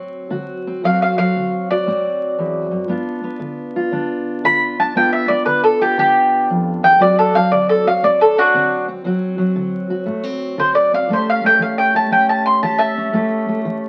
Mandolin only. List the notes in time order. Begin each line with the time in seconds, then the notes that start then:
0.85 F5
1.02 F5
1.18 F5
1.71 D5
4.45 B5
4.80 A5
4.97 G5
5.13 E5
5.28 D5
5.46 B4
5.64 A4
5.82 G4
5.99 G4
6.84 G5
7.02 D5
7.19 A4
7.35 F5
7.52 D5
7.69 A4
7.87 F5
8.04 D5
8.21 A4
8.38 D4 F#4
10.60 C5
10.75 D5
10.94 F5
11.13 C5
11.30 F5
11.46 G5
11.62 F5
11.78 G5
11.96 A5
12.12 G5
12.29 A5
12.46 C6
12.63 A5
12.78 E5 A5